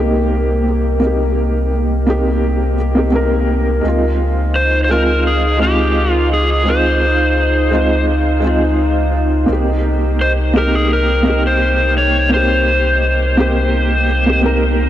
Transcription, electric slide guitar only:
0, 0, Header, 1, 2, 480
1, 0, Start_track
1, 0, Tempo, 705882
1, 695, Time_signature, 4, 2, 24, 8
1, 10128, End_track
2, 0, Start_track
2, 0, Title_t, "Electric slide guitar"
2, 0, Program_c, 0, 29
2, 3098, Note_on_c, 0, 72, 92
2, 3285, Note_off_c, 0, 72, 0
2, 3293, Note_on_c, 0, 72, 65
2, 3337, Note_off_c, 0, 72, 0
2, 3339, Note_on_c, 0, 70, 87
2, 3560, Note_off_c, 0, 70, 0
2, 3584, Note_on_c, 0, 68, 88
2, 3822, Note_off_c, 0, 68, 0
2, 3824, Note_on_c, 0, 67, 87
2, 4158, Note_off_c, 0, 67, 0
2, 4158, Note_on_c, 0, 65, 87
2, 4272, Note_off_c, 0, 65, 0
2, 4308, Note_on_c, 0, 68, 79
2, 4548, Note_off_c, 0, 68, 0
2, 4548, Note_on_c, 0, 72, 92
2, 5474, Note_off_c, 0, 72, 0
2, 6945, Note_on_c, 0, 72, 86
2, 7008, Note_off_c, 0, 72, 0
2, 7192, Note_on_c, 0, 70, 86
2, 7301, Note_off_c, 0, 70, 0
2, 7310, Note_on_c, 0, 68, 76
2, 7412, Note_off_c, 0, 68, 0
2, 7433, Note_on_c, 0, 70, 91
2, 7796, Note_off_c, 0, 70, 0
2, 7799, Note_on_c, 0, 72, 94
2, 8120, Note_off_c, 0, 72, 0
2, 8145, Note_on_c, 0, 73, 100
2, 8387, Note_off_c, 0, 73, 0
2, 8390, Note_on_c, 0, 72, 91
2, 9795, Note_off_c, 0, 72, 0
2, 10128, End_track
0, 0, End_of_file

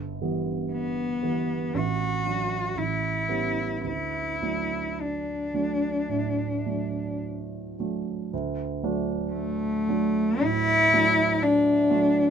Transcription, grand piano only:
0, 0, Header, 1, 2, 480
1, 0, Start_track
1, 0, Key_signature, 2, "major"
1, 0, Tempo, 967742
1, 351, Tempo, 1032702
1, 1311, Tempo, 1081081
1, 1791, Time_signature, 4, 2, 24, 8
1, 1791, Tempo, 1147228
1, 2271, Tempo, 1107011
1, 3711, Tempo, 1010101
1, 4191, Tempo, 1081081
1, 4671, Tempo, 988468
1, 5588, End_track
2, 0, Start_track
2, 0, Title_t, "Grand piano"
2, 0, Program_c, 0, 0
2, 0, Control_c, 0, 64, 127
2, 0, Note_on_c, 0, 31, 43
2, 101, Note_off_c, 0, 31, 0
2, 107, Note_on_c, 0, 52, 36
2, 107, Note_on_c, 0, 55, 36
2, 110, Note_on_c, 0, 59, 34
2, 574, Note_off_c, 0, 52, 0
2, 575, Note_off_c, 0, 55, 0
2, 576, Note_off_c, 0, 59, 0
2, 590, Note_on_c, 0, 52, 33
2, 592, Note_on_c, 0, 55, 29
2, 594, Note_on_c, 0, 59, 37
2, 820, Note_off_c, 0, 52, 0
2, 822, Note_off_c, 0, 55, 0
2, 823, Note_off_c, 0, 59, 0
2, 833, Note_on_c, 0, 33, 49
2, 848, Control_c, 0, 64, 0
2, 931, Control_c, 0, 64, 127
2, 1065, Note_off_c, 0, 33, 0
2, 1070, Note_on_c, 0, 54, 27
2, 1074, Note_on_c, 0, 62, 31
2, 1289, Note_off_c, 0, 54, 0
2, 1291, Note_off_c, 0, 62, 0
2, 1303, Note_on_c, 0, 33, 36
2, 1318, Control_c, 0, 64, 0
2, 1406, Control_c, 0, 64, 127
2, 1533, Note_off_c, 0, 33, 0
2, 1538, Note_on_c, 0, 55, 33
2, 1540, Note_on_c, 0, 59, 32
2, 1541, Note_on_c, 0, 61, 36
2, 1770, Note_off_c, 0, 55, 0
2, 1771, Note_off_c, 0, 59, 0
2, 1772, Note_off_c, 0, 61, 0
2, 1785, Note_on_c, 0, 38, 34
2, 1798, Control_c, 0, 64, 0
2, 1881, Control_c, 0, 64, 127
2, 2022, Note_off_c, 0, 38, 0
2, 2026, Note_on_c, 0, 54, 31
2, 2029, Note_on_c, 0, 62, 30
2, 2030, Note_on_c, 0, 57, 28
2, 2491, Note_off_c, 0, 54, 0
2, 2493, Note_off_c, 0, 57, 0
2, 2493, Note_off_c, 0, 62, 0
2, 2504, Note_on_c, 0, 54, 27
2, 2506, Note_on_c, 0, 57, 29
2, 2507, Note_on_c, 0, 62, 29
2, 2727, Note_off_c, 0, 54, 0
2, 2729, Note_off_c, 0, 57, 0
2, 2729, Note_off_c, 0, 62, 0
2, 2742, Note_on_c, 0, 45, 37
2, 2978, Note_off_c, 0, 45, 0
2, 2988, Note_on_c, 0, 54, 26
2, 2991, Note_on_c, 0, 62, 31
2, 2992, Note_on_c, 0, 57, 26
2, 3460, Note_off_c, 0, 54, 0
2, 3462, Note_off_c, 0, 57, 0
2, 3462, Note_off_c, 0, 62, 0
2, 3481, Note_on_c, 0, 54, 31
2, 3484, Note_on_c, 0, 57, 30
2, 3485, Note_on_c, 0, 62, 33
2, 3695, Note_off_c, 0, 54, 0
2, 3696, Note_off_c, 0, 57, 0
2, 3697, Note_off_c, 0, 62, 0
2, 3716, Note_on_c, 0, 38, 50
2, 3718, Control_c, 0, 64, 0
2, 3808, Control_c, 0, 64, 127
2, 3945, Note_off_c, 0, 38, 0
2, 3954, Note_on_c, 0, 54, 40
2, 3955, Note_on_c, 0, 57, 45
2, 3957, Note_on_c, 0, 62, 49
2, 4413, Note_off_c, 0, 54, 0
2, 4414, Note_off_c, 0, 57, 0
2, 4415, Note_off_c, 0, 62, 0
2, 4436, Note_on_c, 0, 54, 39
2, 4439, Note_on_c, 0, 57, 40
2, 4440, Note_on_c, 0, 62, 43
2, 4656, Note_off_c, 0, 54, 0
2, 4657, Note_off_c, 0, 57, 0
2, 4658, Note_off_c, 0, 62, 0
2, 4674, Note_on_c, 0, 45, 58
2, 4911, Note_off_c, 0, 45, 0
2, 4921, Note_on_c, 0, 54, 39
2, 4924, Note_on_c, 0, 57, 42
2, 4924, Note_on_c, 0, 62, 46
2, 5374, Note_off_c, 0, 54, 0
2, 5375, Note_off_c, 0, 62, 0
2, 5376, Note_off_c, 0, 57, 0
2, 5393, Note_on_c, 0, 54, 49
2, 5395, Note_on_c, 0, 57, 46
2, 5396, Note_on_c, 0, 62, 48
2, 5588, Note_off_c, 0, 54, 0
2, 5588, Note_off_c, 0, 57, 0
2, 5588, Note_off_c, 0, 62, 0
2, 5588, End_track
0, 0, End_of_file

